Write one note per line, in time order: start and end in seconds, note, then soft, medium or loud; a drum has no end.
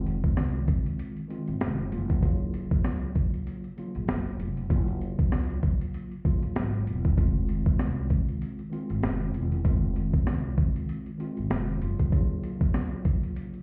0.00 0.17 F1 loud
0.00 1.19 D#3 loud
0.00 1.19 G#3 medium
0.00 1.20 C4 medium
0.00 1.20 F4 loud
0.06 closed hi-hat medium
0.24 kick loud
0.24 closed hi-hat medium
0.37 0.64 C2 medium
0.37 cross-stick medium
0.37 snare loud
0.37 closed hi-hat loud
0.68 kick medium
0.68 closed hi-hat medium
0.86 closed hi-hat medium
0.99 closed hi-hat loud
1.17 closed hi-hat soft
1.28 1.91 D#3 loud
1.28 1.91 G#3 medium
1.28 1.92 C4 medium
1.28 1.92 F4 loud
1.28 closed hi-hat medium
1.47 1.59 G#1 medium
1.47 closed hi-hat soft
1.61 1.88 F1 medium
1.61 cross-stick medium
1.61 snare loud
1.61 closed hi-hat medium
1.79 closed hi-hat soft
1.90 2.60 F#1 loud
1.90 2.20 C#3 medium
1.90 2.20 F#3 medium
1.90 2.21 A#3 medium
1.90 2.21 F4 medium
1.90 closed hi-hat medium
2.10 kick medium
2.10 closed hi-hat medium
2.22 3.66 C#3 medium
2.22 3.67 F#3 medium
2.22 3.67 A#3 medium
2.22 3.67 F4 loud
2.22 kick loud
2.22 closed hi-hat medium
2.54 closed hi-hat medium
2.71 kick loud
2.71 closed hi-hat medium
2.84 3.11 C#2 medium
2.84 cross-stick medium
2.84 snare loud
2.84 closed hi-hat loud
3.15 kick medium
3.15 closed hi-hat medium
3.34 closed hi-hat medium
3.47 closed hi-hat loud
3.64 closed hi-hat soft
3.77 4.63 C#3 medium
3.77 4.64 F#3 medium
3.77 4.64 A#3 medium
3.77 4.65 F4 loud
3.77 closed hi-hat medium
3.95 4.07 A#1 loud
3.95 closed hi-hat soft
4.08 4.35 F#1 medium
4.08 cross-stick loud
4.08 snare loud
4.08 closed hi-hat medium
4.26 closed hi-hat soft
4.40 4.66 F1 medium
4.40 closed hi-hat medium
4.57 closed hi-hat medium
4.68 5.12 F#1 loud
4.68 6.13 C#3 medium
4.68 6.14 F#3 medium
4.68 6.14 A#3 medium
4.68 6.15 F4 loud
4.68 kick loud
4.68 closed hi-hat medium
4.88 closed hi-hat soft
5.01 closed hi-hat medium
5.19 kick loud
5.19 closed hi-hat medium
5.32 5.59 C#2 medium
5.32 cross-stick medium
5.32 snare loud
5.32 closed hi-hat loud
5.50 closed hi-hat soft
5.63 kick medium
5.63 closed hi-hat medium
5.81 closed hi-hat medium
5.94 closed hi-hat loud
6.12 closed hi-hat soft
6.24 7.11 C#3 medium
6.24 7.11 F#3 medium
6.24 7.12 A#3 medium
6.24 7.12 F4 loud
6.24 kick medium
6.24 closed hi-hat medium
6.42 6.54 A#1 medium
6.42 closed hi-hat soft
6.56 6.82 G#1 medium
6.56 cross-stick medium
6.56 snare loud
6.56 closed hi-hat medium
6.74 closed hi-hat soft
6.87 7.13 E1 medium
6.87 closed hi-hat medium
7.05 kick medium
7.05 closed hi-hat medium
7.15 7.59 F1 loud
7.15 8.60 D#3 medium
7.15 8.61 G#3 medium
7.15 8.61 C4 medium
7.15 8.62 F4 loud
7.15 kick loud
7.15 closed hi-hat medium
7.49 closed hi-hat medium
7.66 kick loud
7.66 closed hi-hat medium
7.79 8.06 C2 loud
7.79 cross-stick medium
7.79 snare loud
7.79 closed hi-hat loud
8.10 kick medium
8.10 closed hi-hat medium
8.28 closed hi-hat medium
8.42 closed hi-hat loud
8.59 closed hi-hat soft
8.70 9.58 D#3 medium
8.70 9.58 G#3 medium
8.70 9.58 C4 medium
8.70 9.59 F4 loud
8.70 closed hi-hat medium
8.90 9.01 G#1 loud
8.90 closed hi-hat soft
9.03 9.30 F1 medium
9.03 cross-stick loud
9.03 snare loud
9.03 closed hi-hat medium
9.21 closed hi-hat soft
9.34 9.61 E1 loud
9.34 closed hi-hat medium
9.52 closed hi-hat medium
9.64 10.07 F1 loud
9.64 11.08 D#3 loud
9.64 11.09 G#3 medium
9.64 11.09 C4 medium
9.64 11.10 F4 loud
9.64 kick loud
9.64 closed hi-hat medium
9.96 closed hi-hat medium
10.14 kick loud
10.14 closed hi-hat medium
10.27 10.53 C2 medium
10.27 cross-stick medium
10.27 snare loud
10.27 closed hi-hat loud
10.58 kick loud
10.58 closed hi-hat medium
10.76 closed hi-hat medium
10.89 closed hi-hat loud
11.06 closed hi-hat soft
11.18 11.81 D#3 medium
11.18 11.81 G#3 medium
11.18 11.81 C4 medium
11.18 11.81 F4 loud
11.18 closed hi-hat medium
11.37 11.49 G#1 medium
11.37 closed hi-hat soft
11.50 11.77 F1 medium
11.50 cross-stick medium
11.50 snare loud
11.50 closed hi-hat medium
11.68 closed hi-hat soft
11.80 12.08 F#1 loud
11.80 12.09 C#3 medium
11.80 12.10 F#3 medium
11.80 12.10 A#3 medium
11.80 12.11 F4 loud
11.80 closed hi-hat medium
11.99 kick medium
11.99 closed hi-hat medium
12.11 13.56 C#3 medium
12.11 13.56 F#3 medium
12.11 13.57 A#3 medium
12.11 13.57 F4 loud
12.11 kick loud
12.11 closed hi-hat medium
12.43 closed hi-hat medium
12.61 kick medium
12.61 closed hi-hat medium
12.74 cross-stick medium
12.74 snare loud
12.74 closed hi-hat loud
13.05 kick loud
13.05 closed hi-hat medium
13.23 closed hi-hat medium
13.36 closed hi-hat loud
13.54 closed hi-hat soft